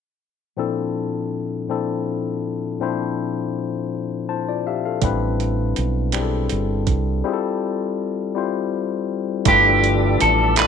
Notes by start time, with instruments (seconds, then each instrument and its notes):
0.57 tine electric piano A#2 F3 C4 D4 E4 A4
1.68 tine electric piano A#2 F3 C4 D4 E4 A4
2.80 tine electric piano A#2 F3 C4 D4 E4 C5
4.29 tine electric piano E4 C5 A5
4.49 tine electric piano F4 D5
4.67 tine electric piano G4 E5 F5
4.85 tine electric piano A4 F5
5.02 fingered electric bass A1, tine electric piano G3 C4 D4 E4 B4, kick, closed hi-hat
5.40 closed hi-hat
5.76 fingered electric bass B1, closed hi-hat
6.12 tine electric piano G3 C4 D4 E4 G#4, finger snap, closed hi-hat
6.22 tine electric piano A4
6.49 fingered electric bass G1, closed hi-hat
6.87 fingered electric bass C2, kick, closed hi-hat
7.24 tine electric piano G3 C4 E4 F4 G#4
7.33 tine electric piano A4
8.35 tine electric piano G3 C4 E4 F4 C5
9.45 fingered electric bass G1, tonewheel organ F3 G3 D4 A4 D5 E5, tine electric piano A3 D4 E4 F4 B4, clean electric guitar G4, kick, closed hi-hat
9.84 closed hi-hat
10.21 fingered electric bass A1, clean electric guitar A4, closed hi-hat
10.56 tine electric piano A3 D4 E4 F4, clean electric guitar B4, clap, closed hi-hat
10.60 tine electric piano D5